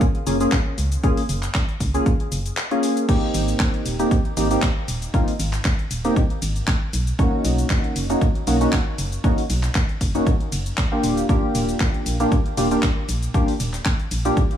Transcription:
0.01 kick, closed hi-hat, cabasa
0.15 closed hi-hat
0.27 F#1 A#3 C#4 F4 G#4, open hi-hat, cabasa
0.40 A#3 C#4 F4 G#4, closed hi-hat, cabasa
0.52 kick, clap, closed hi-hat, cabasa
0.78 C#2, open hi-hat, cabasa
0.92 closed hi-hat, cabasa
1.03 A#3 C#4 F4 G#4, kick, closed hi-hat, cabasa
1.17 open hi-hat
1.29 F#1, open hi-hat, cabasa
1.43 clap, closed hi-hat, cabasa
1.54 kick, clap, closed hi-hat, cabasa
1.69 closed hi-hat
1.80 C#2, kick, open hi-hat, cabasa
1.94 A#3 C#4 F4 G#4, closed hi-hat, cabasa
2.06 kick, closed hi-hat, cabasa
2.20 closed hi-hat
2.32 F#1, open hi-hat, cabasa
2.46 closed hi-hat, cabasa
2.57 clap, closed hi-hat, cabasa
2.71 A#3 C#4 F4 G#4, closed hi-hat
2.83 open hi-hat, cabasa
2.97 closed hi-hat, cabasa
3.08 A#3 C4 D#4 G4, kick, closed hi-hat, crash, cabasa
3.34 G#1, open hi-hat, ride, cabasa
3.48 closed hi-hat, cabasa
3.59 kick, clap, closed hi-hat, cabasa
3.74 closed hi-hat
3.86 D#1, open hi-hat, ride, cabasa
3.99 A#3 C4 D#4 G4, closed hi-hat, cabasa
4.11 kick, closed hi-hat, cabasa
4.25 closed hi-hat
4.37 G#1 A#3 C4 D#4 G4, open hi-hat, ride, cabasa
4.51 A#3 C4 D#4 G4, closed hi-hat, cabasa
4.62 kick, clap, closed hi-hat, cabasa
4.88 D#1, open hi-hat, ride, cabasa
5.02 closed hi-hat, cabasa
5.14 A#3 C4 D#4 F4, kick, closed hi-hat, cabasa
5.28 open hi-hat
5.39 G#1, open hi-hat, ride, cabasa
5.53 clap, closed hi-hat, cabasa
5.65 kick, clap, closed hi-hat, cabasa
5.79 closed hi-hat
5.91 D#1, open hi-hat, ride, cabasa
6.05 A#3 C4 D#4 G4, closed hi-hat, cabasa
6.16 kick, closed hi-hat, cabasa
6.30 closed hi-hat
6.42 G#1, open hi-hat, ride, cabasa
6.56 closed hi-hat, cabasa
6.67 kick, clap, closed hi-hat, cabasa
6.93 B1, open hi-hat, ride, cabasa
7.07 closed hi-hat, cabasa
7.19 A#3 C#4 D#4 F#4, kick, closed hi-hat, cabasa
7.44 B1, open hi-hat, ride, cabasa
7.58 closed hi-hat, cabasa
7.70 kick, clap, closed hi-hat, cabasa
7.84 closed hi-hat
7.96 F#1, open hi-hat, ride, cabasa
8.10 A#3 C#4 D#4 F#4, closed hi-hat, cabasa
8.21 kick, closed hi-hat, cabasa
8.35 closed hi-hat
8.47 B1 A#3 C#4 D#4 F#4, open hi-hat, ride, cabasa
8.61 A#3 C#4 D#4 F#4, closed hi-hat, cabasa
8.72 kick, clap, closed hi-hat, cabasa
8.98 F#1, open hi-hat, ride, cabasa
9.12 closed hi-hat, cabasa
9.24 A#3 C#4 D#4 F#4, kick, closed hi-hat, cabasa
9.38 open hi-hat
9.50 B1, open hi-hat, ride, cabasa
9.63 clap, closed hi-hat, cabasa
9.75 kick, clap, closed hi-hat, cabasa
9.89 closed hi-hat
10.01 F#1, kick, open hi-hat, ride, cabasa
10.15 A#3 C#4 D#4 F#4, closed hi-hat, cabasa
10.27 kick, closed hi-hat, cabasa
10.40 closed hi-hat
10.52 F#1, open hi-hat, ride, cabasa
10.66 closed hi-hat, cabasa
10.77 kick, clap, closed hi-hat, cabasa
10.92 A#3 D4 F4 G4
11.03 D#1, open hi-hat, ride, cabasa
11.17 closed hi-hat, cabasa
11.29 A#3 D4 F4 G4, kick, closed hi-hat, cabasa
11.55 D#1, open hi-hat, ride, cabasa
11.69 closed hi-hat, cabasa
11.80 kick, clap, closed hi-hat, cabasa
11.94 closed hi-hat
12.06 A#1, open hi-hat, ride, cabasa
12.20 A#3 D4 F4 G4, closed hi-hat, cabasa
12.32 kick, closed hi-hat, cabasa
12.46 closed hi-hat
12.57 D#1 A#3 D4 F4 G4, open hi-hat, ride, cabasa
12.71 A#3 D4 F4 G4, closed hi-hat, cabasa
12.83 kick, clap, closed hi-hat, cabasa
13.09 A#1, open hi-hat, ride, cabasa
13.23 closed hi-hat, cabasa
13.34 A#3 D4 F4 G4, kick, closed hi-hat, cabasa
13.48 open hi-hat
13.60 D#1, open hi-hat, ride, cabasa
13.73 clap, closed hi-hat, cabasa
13.85 kick, clap, closed hi-hat, cabasa
13.99 closed hi-hat
14.11 A#1, open hi-hat, ride, cabasa
14.25 A#3 D4 F4 G4, closed hi-hat, cabasa
14.37 kick, closed hi-hat, cabasa
14.51 closed hi-hat

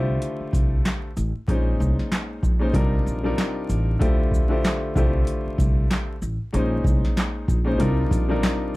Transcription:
Already playing: C2 D3 A3 E4 F4 G4 C5
0.22 closed hi-hat
0.40 muted upright bass stroke
0.53 C2, kick, closed hi-hat, shaker
0.85 snare, clap, closed hi-hat
1.17 A1, closed hi-hat, shaker
1.48 A#1 A#2 G#3 C#4 D#4 C5, kick, closed hi-hat
1.80 C2, shaker
1.99 snare
2.12 snare, clap, closed hi-hat
2.43 A#1, kick, shaker
2.59 A#2 G#3 C#4 D#4 C5
2.73 C2 C3 G3 D4 D#4 F4 A#4, kick, closed hi-hat
3.06 A#1, shaker
3.23 C3 G3 D4 D#4 F4 A#4
3.38 snare, clap, closed hi-hat
3.69 A1, closed hi-hat, shaker
3.99 D2 D3 A3 E4 F4 G4 C5, kick, closed hi-hat
4.32 kick, shaker
4.49 D3 A3 E4 F4 G4 C5
4.65 snare, clap, closed hi-hat
4.95 C2 D3 A3 E4 F4 G4 C5, kick, shaker
5.27 closed hi-hat
5.46 muted upright bass stroke
5.58 C2, kick, closed hi-hat, shaker
5.91 snare, clap, closed hi-hat
6.22 A1, shaker
6.53 A#1 A#2 G#3 C#4 D#4 C5, closed hi-hat
6.84 C2, kick, shaker
7.05 snare
7.17 snare, clap, closed hi-hat
7.48 A#1, kick, shaker
7.65 A#2 G#3 C#4 D#4 C5
7.78 C2 C3 G3 D4 D#4 F4 A#4, closed hi-hat
8.11 A#1, kick, closed hi-hat, shaker
8.28 C3 G3 D4 D#4 F4 A#4
8.43 snare, clap, closed hi-hat

